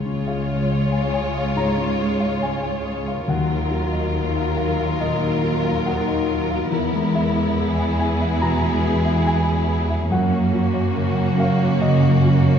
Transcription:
0.00 1.53 C#2 soft
0.00 3.25 C#2 soft
0.00 3.32 C#3 soft
0.00 3.25 G#3 soft
0.00 3.25 F4 soft
0.00 3.25 C#5 soft
0.00 0.20 F5 soft
0.05 0.41 C#4 soft
0.27 1.98 C#4 soft
0.27 0.62 G#4 soft
0.27 0.47 F5 soft
0.49 0.84 F5 soft
0.70 1.55 G#3 soft
0.70 1.05 C#5 soft
0.92 1.12 G#5 soft
1.12 2.84 G#4 soft
1.12 1.47 C#5 soft
1.12 1.53 G#5 soft
1.34 1.69 F5 soft
1.56 1.91 G#2 soft
1.56 2.40 G#3 soft
1.56 2.39 A#5 medium
1.77 2.12 C#4 soft
1.98 3.32 C#4 soft
1.98 2.33 G#4 soft
2.20 2.55 F5 soft
2.41 3.32 G#3 soft
2.41 2.77 C#5 soft
2.41 2.61 G#5 soft
2.63 2.98 G#5 soft
2.85 3.32 G#4 soft
2.85 3.20 C#5 soft
3.07 3.29 F5 soft
3.28 4.97 D#2 soft
3.28 6.67 D#2 soft
3.28 6.75 D#3 soft
3.28 6.68 F#3 soft
3.28 6.68 F4 soft
3.28 7.58 A#4 soft
3.28 4.54 F#5 soft
3.50 3.85 A#3 soft
3.71 4.06 F#3 soft
3.71 5.43 A#3 soft
3.92 4.27 D#5 soft
4.15 5.00 D#4 soft
4.15 4.49 A#4 soft
4.36 4.55 F5 soft
4.57 6.75 F#3 soft
4.57 4.92 A#4 soft
4.57 4.78 F5 soft
4.79 5.14 F5 soft
5.00 5.35 A#2 soft
5.00 5.85 D#4 soft
5.00 5.82 D#5 medium
5.22 5.57 A#3 soft
5.44 5.78 F#3 soft
5.44 6.75 A#3 soft
5.64 5.99 F5 soft
5.85 6.75 D#4 soft
5.85 6.20 A#4 soft
5.85 6.68 F#5 soft
6.07 6.42 D#5 soft
6.29 6.75 A#4 soft
6.29 6.63 A#4 soft
6.50 6.72 F5 soft
6.71 10.07 E2 soft
6.71 8.39 E2 soft
6.71 10.15 E3 soft
6.71 10.11 B3 soft
6.71 10.08 E4 soft
6.93 7.27 G#3 soft
7.14 8.83 G#3 soft
7.14 7.49 G#4 soft
7.14 7.34 E5 medium
7.35 7.70 E5 soft
7.57 8.41 E4 soft
7.57 7.91 G#4 soft
7.57 10.12 G#4 soft
7.78 7.98 G#5 soft
7.99 8.34 G#4 soft
7.99 9.68 G#4 soft
7.99 8.39 G#5 medium
8.21 8.55 E5 soft
8.42 8.76 B2 soft
8.42 9.26 E4 soft
8.42 9.23 A#5 medium
8.63 8.97 G#3 soft
8.84 10.15 G#3 soft
8.84 9.18 G#4 soft
9.05 9.39 E5 soft
9.26 10.15 E4 soft
9.26 9.61 G#4 soft
9.26 9.46 G#5 medium
9.48 9.82 G#5 soft
9.69 10.03 G#4 soft
9.69 10.15 G#4 soft
9.89 10.11 E5 soft
10.10 11.77 F#2 soft
10.10 12.59 F#2 soft
10.10 12.59 F#2 medium
10.10 12.59 A#3 soft
10.10 12.59 C#4 soft
10.10 12.59 F#4 soft
10.10 11.15 F#5 medium
10.32 10.66 A#3 soft
10.53 12.24 A#3 soft
10.53 10.87 F#4 soft
10.73 11.08 C#5 soft
10.95 11.81 C#3 soft
10.95 11.30 A#4 soft
11.16 11.51 F#5 soft
11.38 12.59 F#4 soft
11.38 11.72 A#4 soft
11.38 11.79 F5 medium
11.59 11.94 C#5 soft
11.80 12.16 C#3 soft
11.80 12.59 C#3 soft
11.80 12.59 D#5 medium
12.02 12.38 A#3 soft
12.25 12.59 A#3 soft
12.25 12.59 F#4 soft
12.47 12.59 C#5 soft

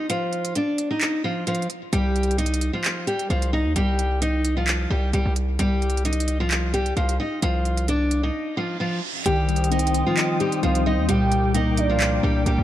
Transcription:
0.10 0.53 F3 medium
0.10 0.53 F4 loud
0.10 closed hi-hat medium
0.33 closed hi-hat soft
0.45 closed hi-hat medium
0.55 0.89 D4 medium
0.55 0.89 D5 medium
0.55 closed hi-hat medium
0.78 closed hi-hat medium
0.91 1.22 D#4 medium
0.91 1.23 D#5 medium
1.01 clap loud
1.01 closed hi-hat medium
1.24 1.43 F3 medium
1.24 1.43 F4 medium
1.47 1.66 F3 medium
1.47 1.66 F4 medium
1.47 closed hi-hat medium
1.55 closed hi-hat medium
1.62 closed hi-hat soft
1.70 closed hi-hat medium
1.93 2.70 C2 loud
1.93 2.36 G3 medium
1.93 2.36 G4 loud
1.93 closed hi-hat medium
2.16 closed hi-hat soft
2.23 closed hi-hat medium
2.31 closed hi-hat medium
2.38 2.71 D#4 medium
2.38 2.72 D#5 medium
2.38 closed hi-hat medium
2.46 closed hi-hat medium
2.54 closed hi-hat medium
2.61 closed hi-hat medium
2.73 3.06 F3 medium
2.73 3.05 F4 medium
2.84 clap loud
2.84 closed hi-hat medium
3.07 3.27 G3 medium
3.07 3.26 G4 medium
3.07 closed hi-hat medium
3.19 closed hi-hat medium
3.30 3.67 C2 loud
3.30 3.49 F3 medium
3.30 3.49 F4 medium
3.30 closed hi-hat soft
3.42 closed hi-hat medium
3.53 3.72 D#4 medium
3.53 3.72 D#5 medium
3.65 3.75 D#2 loud
3.76 4.86 C2 loud
3.76 4.19 G3 medium
3.76 4.19 G4 loud
3.76 closed hi-hat medium
3.99 closed hi-hat medium
4.22 4.55 D#4 medium
4.22 4.55 D#5 medium
4.22 closed hi-hat medium
4.45 closed hi-hat medium
4.57 4.89 F3 medium
4.57 4.88 F4 medium
4.67 clap loud
4.67 closed hi-hat medium
4.90 5.12 C2 loud
4.90 5.10 G3 medium
4.90 5.09 G4 medium
5.13 5.25 C2 loud
5.13 5.33 G3 medium
5.13 5.32 G4 medium
5.13 closed hi-hat medium
5.26 5.58 C2 loud
5.36 closed hi-hat medium
5.59 6.93 C2 loud
5.59 6.03 G3 medium
5.59 6.02 G4 loud
5.59 closed hi-hat medium
5.82 closed hi-hat soft
5.90 closed hi-hat medium
5.97 closed hi-hat medium
6.05 6.38 D#4 medium
6.05 6.38 D#5 medium
6.05 closed hi-hat medium
6.13 closed hi-hat medium
6.20 closed hi-hat medium
6.28 closed hi-hat medium
6.40 6.72 F3 medium
6.40 6.72 F4 medium
6.51 clap loud
6.51 closed hi-hat medium
6.74 6.93 G3 medium
6.74 6.93 G4 medium
6.74 closed hi-hat medium
6.86 closed hi-hat medium
6.97 7.19 C2 loud
6.97 7.16 F3 medium
6.97 7.16 F4 medium
6.97 closed hi-hat soft
7.09 closed hi-hat medium
7.20 7.38 D#4 medium
7.20 7.39 D#5 medium
7.42 8.30 C2 loud
7.42 7.86 F3 medium
7.42 7.85 F4 loud
7.42 closed hi-hat medium
7.65 closed hi-hat soft
7.77 closed hi-hat medium
7.88 8.21 D4 medium
7.88 8.22 D5 medium
7.88 closed hi-hat medium
8.11 closed hi-hat medium
8.23 8.55 D#4 medium
8.23 8.55 D#5 medium
8.34 reverse cymbal medium
8.57 8.76 F3 medium
8.57 8.76 F4 medium
8.80 8.99 F3 medium
8.80 8.99 F4 medium
9.26 10.03 C2 loud
9.26 10.40 D#3 medium
9.26 9.69 G3 medium
9.26 9.69 G4 loud
9.26 11.07 C5 medium
9.26 10.59 G5 loud
9.26 12.63 G5 medium
9.26 11.07 D#6 medium
9.26 closed hi-hat medium
9.49 10.63 G3 medium
9.49 closed hi-hat soft
9.56 closed hi-hat medium
9.64 closed hi-hat medium
9.71 10.62 C4 medium
9.71 10.04 D#4 medium
9.71 10.05 D#5 medium
9.71 closed hi-hat medium
9.79 closed hi-hat medium
9.87 closed hi-hat medium
9.94 closed hi-hat medium
10.07 10.39 F3 medium
10.07 10.38 F4 medium
10.17 11.09 D#5 loud
10.17 clap loud
10.17 closed hi-hat medium
10.40 10.60 G3 medium
10.40 11.09 D#4 medium
10.40 10.59 G4 medium
10.40 closed hi-hat medium
10.52 closed hi-hat medium
10.63 11.00 C2 loud
10.63 10.82 F3 medium
10.63 11.09 C4 medium
10.63 10.82 F4 medium
10.63 10.85 F5 medium
10.63 closed hi-hat soft
10.75 closed hi-hat medium
10.86 11.09 G3 medium
10.86 11.05 D#4 medium
10.86 11.08 D#5 medium
10.86 11.05 D#5 medium
10.98 11.08 D#2 loud
11.09 12.19 C2 loud
11.09 12.23 A#2 loud
11.09 11.52 G3 medium
11.09 11.52 G4 loud
11.09 12.63 A#4 medium
11.09 11.74 G5 loud
11.09 12.63 D6 medium
11.09 closed hi-hat medium
11.32 12.46 G3 medium
11.32 closed hi-hat medium
11.55 12.44 A#3 medium
11.55 11.88 D#4 medium
11.55 11.88 D#5 medium
11.55 closed hi-hat medium
11.77 12.22 D4 medium
11.77 12.42 D5 medium
11.77 closed hi-hat medium
11.89 12.22 F3 medium
11.89 12.21 F4 medium
12.00 12.63 D5 loud
12.00 clap loud
12.00 closed hi-hat medium
12.23 12.45 C2 loud
12.23 12.43 G3 medium
12.23 12.63 D4 medium
12.23 12.42 G4 medium
12.46 12.58 C2 loud
12.46 12.63 G3 medium
12.46 12.63 A#3 medium
12.46 12.63 G4 medium
12.46 closed hi-hat medium
12.58 12.63 C2 loud

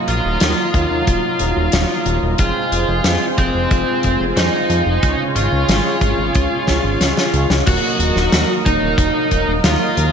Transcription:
0.00 0.70 F#3 loud
0.00 2.36 F#3 medium
0.00 0.70 A#3 medium
0.00 0.70 D#4 medium
0.00 0.70 F4 loud
0.00 2.36 F5 medium
0.00 2.35 A#5 medium
0.00 2.35 D#6 medium
0.08 0.21 A#1 medium
0.08 2.26 F4 medium
0.08 closed hi-hat medium
0.25 0.38 D#1 medium
0.40 0.54 D#2 loud
0.40 snare loud
0.40 closed hi-hat loud
0.74 0.87 D#2 medium
0.74 2.35 F#3 medium
0.74 2.35 A#3 medium
0.74 2.35 D#4 medium
0.74 2.35 F4 loud
0.74 kick loud
0.74 closed hi-hat medium
0.91 1.03 D#2 medium
1.07 1.20 D#1 loud
1.07 kick loud
1.07 closed hi-hat loud
1.39 1.53 D#1 medium
1.39 closed hi-hat medium
1.57 1.69 D#1 medium
1.72 1.86 D#1 loud
1.72 snare loud
1.72 closed hi-hat loud
2.06 2.19 D#1 medium
2.06 closed hi-hat medium
2.23 2.35 D#1 medium
2.38 2.52 F1 loud
2.38 3.34 G#3 loud
2.38 3.34 C4 medium
2.38 7.62 F4 medium
2.38 3.25 F4 loud
2.38 3.34 F4 medium
2.38 3.34 G#4 loud
2.38 5.00 C5 medium
2.38 5.00 C6 loud
2.38 kick loud
2.38 closed hi-hat medium
2.72 2.85 F1 medium
2.72 closed hi-hat medium
2.88 3.01 F1 medium
3.04 3.18 F2 loud
3.04 snare loud
3.04 closed hi-hat loud
3.38 3.51 F1 medium
3.38 4.99 G#3 medium
3.38 4.24 C4 medium
3.38 4.99 C4 medium
3.38 4.99 F4 medium
3.38 4.99 G#4 loud
3.38 kick medium
3.38 closed hi-hat medium
3.54 3.67 F1 medium
3.71 3.84 F1 loud
3.71 kick loud
3.71 closed hi-hat medium
4.03 4.17 F1 loud
4.03 kick medium
4.03 closed hi-hat medium
4.20 4.33 F1 medium
4.37 4.50 F2 loud
4.37 5.23 D#4 medium
4.37 snare loud
4.37 closed hi-hat loud
4.70 4.83 F2 medium
4.70 closed hi-hat medium
4.86 4.99 F1 medium
5.03 5.16 C#2 loud
5.03 5.98 C#3 loud
5.03 5.98 G#3 medium
5.03 5.98 C#4 medium
5.03 5.98 F4 medium
5.03 5.98 G#4 loud
5.03 7.64 C#5 medium
5.03 7.64 C#6 loud
5.03 kick loud
5.03 closed hi-hat medium
5.36 5.49 G#1 medium
5.36 7.53 F4 medium
5.36 closed hi-hat medium
5.52 5.65 C#2 medium
5.69 5.81 G#1 loud
5.69 snare loud
5.69 closed hi-hat loud
6.01 6.14 G#1 medium
6.01 7.30 C#3 medium
6.01 7.30 G#3 medium
6.01 7.30 C#4 medium
6.01 7.30 F4 medium
6.01 7.30 G#4 loud
6.01 kick loud
6.01 closed hi-hat medium
6.18 6.31 G#1 medium
6.35 6.48 C#2 loud
6.35 kick loud
6.35 closed hi-hat medium
6.67 6.81 C#2 loud
6.67 kick medium
6.67 snare medium
6.67 closed hi-hat medium
6.84 6.97 G#1 medium
7.01 7.13 C#2 loud
7.01 snare medium
7.01 closed hi-hat loud
7.17 snare medium
7.33 7.46 C#2 medium
7.33 7.63 G#3 medium
7.33 7.63 C#4 medium
7.33 7.63 F4 medium
7.33 7.63 G#4 medium
7.33 closed hi-hat medium
7.50 7.63 C#2 medium
7.50 snare medium
7.66 7.80 D#1 loud
7.66 8.61 F#3 loud
7.66 8.62 A#3 medium
7.66 8.62 D#4 medium
7.66 8.52 F#4 loud
7.66 8.62 F#4 loud
7.66 10.12 A#4 medium
7.66 10.12 D#5 medium
7.66 10.12 A#5 medium
7.66 10.12 D#6 loud
7.66 kick loud
7.66 closed hi-hat loud
7.66 crash loud
7.99 8.12 D#1 medium
7.99 closed hi-hat medium
8.16 8.29 D#1 medium
8.16 snare soft
8.32 8.45 D#2 loud
8.32 snare loud
8.32 closed hi-hat loud
8.65 8.79 D#1 medium
8.65 10.12 F#3 medium
8.65 10.12 A#3 medium
8.65 9.51 D#4 loud
8.65 10.12 D#4 medium
8.65 9.51 D#4 medium
8.65 10.12 A#4 loud
8.65 kick loud
8.65 closed hi-hat medium
8.82 8.95 D#1 medium
8.98 9.11 D#1 loud
8.98 kick loud
8.98 closed hi-hat loud
9.31 9.44 D#1 loud
9.31 kick medium
9.31 closed hi-hat medium
9.48 9.61 D#1 medium
9.64 9.77 D#2 loud
9.64 10.12 F4 loud
9.64 10.12 F4 medium
9.64 snare loud
9.64 closed hi-hat medium
9.97 10.10 D#2 loud
9.97 closed hi-hat medium

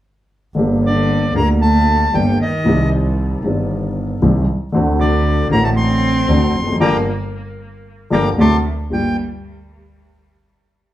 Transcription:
0.55 1.32 G1 medium
0.55 1.32 G2 medium
0.55 1.31 D3 medium
0.55 1.32 G3 medium
0.55 1.32 A#3 medium
0.59 1.33 G4 medium
0.84 1.33 D3 medium
0.84 1.34 D5 medium
1.33 2.10 D2 medium
1.33 2.10 A#2 soft
1.33 2.10 D3 medium
1.33 2.10 G3 soft
1.33 1.47 A#3 medium
1.33 2.11 G4 soft
1.33 1.49 A#5 medium
1.61 2.10 A3 medium
1.61 2.16 A5 medium
2.13 2.36 G1 medium
2.13 2.36 G2 medium
2.13 2.36 D3 medium
2.13 2.38 G3 medium
2.13 2.36 G3 soft
2.13 2.36 A#3 medium
2.13 2.36 G4 medium
2.13 2.39 G5 medium
2.40 2.89 D#3 medium
2.40 2.90 D#5 medium
2.64 3.40 C2 medium
2.64 3.40 C3 medium
2.64 3.39 D#3 medium
2.64 3.40 G3 medium
2.64 3.40 C4 medium
2.64 3.41 G4 medium
3.42 4.18 G1 medium
3.42 4.18 G2 medium
3.42 4.17 D#3 soft
3.42 4.18 G3 soft
3.42 4.18 C4 soft
3.42 4.19 G4 medium
4.22 4.43 C2 medium
4.22 4.44 C3 medium
4.22 4.43 D#3 medium
4.22 4.44 G3 medium
4.22 4.43 C4 medium
4.22 4.43 G4 medium
4.73 5.47 D2 medium
4.73 5.48 D2 medium
4.73 5.47 D3 medium
4.73 5.47 A3 medium
4.73 5.48 C4 medium
4.73 5.48 F#4 medium
5.00 5.47 D3 medium
5.00 5.48 D5 medium
5.49 6.24 A1 medium
5.49 6.25 A1 medium
5.49 6.25 A2 medium
5.49 6.23 D3 medium
5.49 6.24 A3 soft
5.49 5.62 A#3 medium
5.49 6.25 C4 soft
5.49 6.25 F#4 medium
5.49 5.64 A#5 medium
5.63 5.69 A3 medium
5.63 5.70 A5 medium
5.75 6.76 C4 medium
5.75 6.76 C6 loud
6.28 6.50 D2 medium
6.28 6.50 D3 medium
6.28 6.50 A3 medium
6.28 6.50 C4 medium
6.28 6.50 F#4 medium
6.55 6.80 F1 medium
6.61 6.67 E2 soft
6.66 6.73 F2 medium
6.73 6.80 F#2 medium
6.80 7.00 G1 medium
6.80 6.97 D3 medium
6.80 6.97 F3 medium
6.80 6.97 G3 medium
6.80 6.98 A#3 medium
6.80 6.97 G5 medium
6.80 6.97 A#5 medium
6.80 6.97 D6 medium
8.10 8.31 G1 medium
8.10 8.28 D3 medium
8.10 8.28 F3 medium
8.10 8.28 G3 medium
8.10 8.30 A#3 medium
8.10 8.30 G5 medium
8.10 8.29 A#5 medium
8.10 8.29 D6 medium
8.38 8.58 D2 medium
8.38 8.55 C3 medium
8.38 8.55 D3 medium
8.38 8.56 F#3 medium
8.38 8.56 A3 medium
8.38 8.57 A5 medium
8.38 8.57 C6 medium
8.38 8.57 D6 medium
8.90 9.13 G1 soft
8.90 9.13 G2 soft
8.90 9.16 G3 medium
8.90 9.13 A#3 soft
8.90 9.13 F4 soft
8.90 9.13 G4 medium
8.90 9.17 G5 medium

